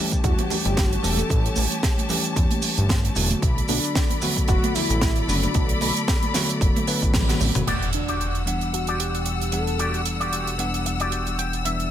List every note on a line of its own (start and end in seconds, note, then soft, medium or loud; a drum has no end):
0.00 1.00 E3 medium
0.00 1.01 G3 medium
0.00 1.01 A3 medium
0.00 1.01 C#4 medium
0.00 1.01 G4 medium
0.00 3.38 G4 medium
0.00 3.38 C#5 medium
0.00 3.38 A5 medium
0.11 kick medium
0.11 closed hi-hat soft
0.11 maracas medium
0.24 0.34 E2 medium
0.24 0.49 F#4 medium
0.24 kick loud
0.24 closed hi-hat medium
0.24 maracas soft
0.39 closed hi-hat medium
0.39 high conga medium
0.50 0.86 G4 loud
0.50 open hi-hat loud
0.50 low conga medium
0.50 maracas medium
0.65 0.98 G1 medium
0.65 closed hi-hat medium
0.65 maracas soft
0.77 kick loud
0.77 snare loud
0.77 closed hi-hat medium
0.77 high conga medium
0.77 maracas soft
0.86 1.05 F#4 loud
0.93 closed hi-hat soft
1.02 1.23 E1 medium
1.02 2.06 E3 medium
1.02 2.07 G3 medium
1.02 2.07 A3 medium
1.02 2.07 C#4 medium
1.02 2.07 G4 medium
1.02 1.56 A4 loud
1.02 open hi-hat loud
1.02 maracas medium
1.17 closed hi-hat medium
1.17 high conga medium
1.17 maracas soft
1.29 1.49 A1 loud
1.29 kick loud
1.29 closed hi-hat medium
1.29 maracas soft
1.46 closed hi-hat medium
1.56 1.67 A1 medium
1.56 open hi-hat loud
1.56 high conga medium
1.56 maracas medium
1.71 closed hi-hat medium
1.71 maracas soft
1.83 kick loud
1.83 snare medium
1.83 closed hi-hat medium
1.83 maracas soft
1.98 closed hi-hat medium
1.98 high conga medium
2.09 3.13 E3 medium
2.09 3.13 G3 medium
2.09 3.13 A3 medium
2.09 3.13 C#4 medium
2.09 3.14 G4 medium
2.09 open hi-hat loud
2.09 low conga medium
2.09 maracas medium
2.24 closed hi-hat medium
2.24 maracas soft
2.36 2.46 E2 medium
2.36 kick loud
2.36 closed hi-hat medium
2.36 maracas soft
2.51 closed hi-hat medium
2.51 high conga medium
2.62 open hi-hat medium
2.62 maracas medium
2.77 3.10 G1 medium
2.77 closed hi-hat medium
2.77 maracas soft
2.89 kick loud
2.89 snare loud
2.89 closed hi-hat medium
2.89 high conga medium
2.89 maracas soft
3.05 closed hi-hat medium
3.15 3.35 E1 medium
3.15 4.19 D3 medium
3.15 4.19 F#3 medium
3.15 4.19 A3 medium
3.15 4.20 B3 medium
3.15 4.20 F#4 medium
3.15 open hi-hat loud
3.15 maracas medium
3.30 closed hi-hat medium
3.30 high conga medium
3.30 maracas soft
3.42 3.61 B1 loud
3.42 7.63 A4 medium
3.42 7.63 D5 medium
3.42 7.63 B5 medium
3.42 kick loud
3.42 closed hi-hat medium
3.42 maracas soft
3.58 closed hi-hat soft
3.68 3.79 B1 medium
3.68 4.18 D4 loud
3.68 open hi-hat loud
3.68 high conga medium
3.68 maracas medium
3.84 closed hi-hat medium
3.84 maracas soft
3.95 kick loud
3.95 snare loud
3.95 closed hi-hat medium
3.95 maracas soft
4.09 closed hi-hat medium
4.09 high conga medium
4.21 5.25 D3 medium
4.21 5.25 F#3 medium
4.21 5.25 A3 medium
4.21 5.26 B3 medium
4.21 5.26 F#4 loud
4.21 open hi-hat loud
4.21 low conga medium
4.21 maracas medium
4.37 kick medium
4.37 closed hi-hat medium
4.37 maracas soft
4.48 4.59 F#1 medium
4.48 4.76 F#4 loud
4.48 kick loud
4.48 closed hi-hat medium
4.48 maracas soft
4.64 closed hi-hat medium
4.64 high conga medium
4.75 5.30 E4 loud
4.75 open hi-hat medium
4.75 low conga loud
4.75 maracas loud
4.90 5.22 A1 medium
4.90 closed hi-hat medium
4.90 maracas medium
5.01 kick loud
5.01 snare loud
5.01 closed hi-hat medium
5.01 high conga medium
5.01 maracas soft
5.16 closed hi-hat soft
5.27 5.47 F#1 medium
5.27 6.31 D3 medium
5.27 6.31 F#3 medium
5.27 6.32 A3 medium
5.27 6.32 B3 medium
5.27 5.38 D4 medium
5.27 6.32 F#4 medium
5.27 open hi-hat loud
5.27 maracas medium
5.36 5.45 C#4 medium
5.43 5.81 D4 medium
5.43 closed hi-hat medium
5.43 high conga medium
5.43 maracas soft
5.54 5.74 B1 loud
5.54 kick loud
5.54 closed hi-hat medium
5.54 maracas soft
5.69 closed hi-hat medium
5.81 5.91 B1 medium
5.81 open hi-hat loud
5.81 high conga medium
5.81 maracas medium
5.96 closed hi-hat medium
5.96 maracas medium
6.08 kick loud
6.08 snare loud
6.08 closed hi-hat medium
6.08 maracas soft
6.23 closed hi-hat medium
6.23 high conga medium
6.34 6.85 D3 medium
6.34 6.85 F#3 medium
6.34 6.85 A3 medium
6.34 6.85 B3 medium
6.34 6.86 F#4 loud
6.34 snare medium
6.34 open hi-hat loud
6.34 low conga medium
6.34 maracas loud
6.49 closed hi-hat medium
6.49 maracas medium
6.61 6.71 F#1 medium
6.61 kick loud
6.61 closed hi-hat medium
6.61 maracas soft
6.76 closed hi-hat medium
6.76 high conga medium
6.87 7.25 D3 medium
6.87 7.25 F#3 medium
6.87 7.25 A3 medium
6.87 7.25 B3 medium
6.87 7.26 B4 medium
6.87 open hi-hat medium
6.87 maracas medium
7.02 7.35 A1 medium
7.02 kick medium
7.02 closed hi-hat medium
7.02 maracas medium
7.14 kick loud
7.14 snare loud
7.14 closed hi-hat medium
7.14 high tom medium
7.14 high conga medium
7.14 maracas soft
7.29 7.49 D3 medium
7.29 7.50 F#3 medium
7.29 7.50 A3 medium
7.29 7.50 B3 medium
7.29 7.50 F#4 medium
7.29 snare medium
7.29 closed hi-hat medium
7.40 7.51 A1 loud
7.40 open hi-hat loud
7.40 low conga medium
7.40 maracas medium
7.55 7.63 F#1 medium
7.55 7.66 D3 medium
7.55 7.66 F#3 medium
7.55 7.66 A3 medium
7.55 7.66 B3 medium
7.55 7.66 F#4 medium
7.55 closed hi-hat medium
7.55 mid tom medium
7.55 high conga medium
7.55 maracas medium
7.67 11.91 E1 medium
7.67 11.91 G3 medium
7.67 7.88 F#4 loud
7.67 7.88 G4 medium
7.67 7.88 D5 loud
7.67 11.88 F#5 medium
7.67 11.91 E6 medium
7.67 closed hi-hat medium
7.67 crash medium
7.67 impact medium
7.82 closed hi-hat soft
7.93 8.43 D4 loud
7.93 closed hi-hat medium
8.08 8.41 F#4 medium
8.08 8.41 G4 medium
8.08 8.41 D5 medium
8.08 closed hi-hat medium
8.21 closed hi-hat medium
8.35 closed hi-hat soft
8.46 9.50 E3 medium
8.46 9.50 G3 medium
8.46 9.50 B3 medium
8.46 9.50 D4 medium
8.46 9.51 F#5 medium
8.46 closed hi-hat medium
8.61 closed hi-hat soft
8.73 9.01 F#4 medium
8.73 muted clean electric guitar stroke medium
8.73 closed hi-hat medium
8.87 9.34 F#4 medium
8.87 9.34 G4 medium
8.87 9.34 D5 medium
8.87 closed hi-hat soft
9.00 9.52 G4 medium
9.00 closed hi-hat medium
9.15 closed hi-hat medium
9.26 closed hi-hat medium
9.41 closed hi-hat soft
9.52 10.56 E3 medium
9.52 10.56 G3 medium
9.52 10.56 B3 medium
9.52 10.56 D4 medium
9.52 10.02 A4 loud
9.52 10.57 F#5 medium
9.52 closed hi-hat medium
9.67 closed hi-hat soft
9.79 10.00 F#4 loud
9.79 10.00 G4 medium
9.79 10.00 D5 loud
9.79 closed hi-hat medium
9.94 closed hi-hat soft
10.05 closed hi-hat medium
10.20 10.53 F#4 medium
10.20 10.53 G4 medium
10.20 10.53 D5 loud
10.20 closed hi-hat soft
10.33 closed hi-hat medium
10.47 closed hi-hat medium
10.58 11.62 E3 medium
10.58 11.62 G3 medium
10.58 11.62 B3 medium
10.58 11.63 D4 medium
10.58 11.63 F#5 medium
10.58 closed hi-hat medium
10.74 closed hi-hat soft
10.85 muted clean electric guitar stroke medium
10.85 closed hi-hat medium
11.00 11.46 F#4 medium
11.00 11.46 G4 medium
11.00 11.38 D5 medium
11.00 closed hi-hat medium
11.12 closed hi-hat medium
11.27 closed hi-hat medium
11.39 11.63 G5 medium
11.39 closed hi-hat medium
11.53 closed hi-hat soft
11.64 11.91 E3 medium
11.64 11.91 G3 medium
11.64 11.91 B3 medium
11.64 11.91 D4 medium
11.64 11.90 E5 medium
11.64 closed hi-hat medium
11.80 closed hi-hat soft